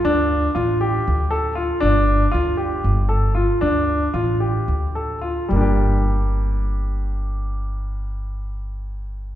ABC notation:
X:1
M:7/8
L:1/8
Q:1/4=112
K:Gm
V:1 name="Grand piano"
D2 F G2 A F | D2 F G2 A F | D2 F G2 A F | [G,B,DG]6- [G,B,DG]- |
[G,B,DG]6- [G,B,DG] |]
V:2 name="Upright bass" clef=bass
D,,2 A,,,2 D,,3 | G,,,2 D,,2 G,,,3 | D,,2 A,,,2 D,,3 | G,,,6- G,,,- |
G,,,6- G,,, |]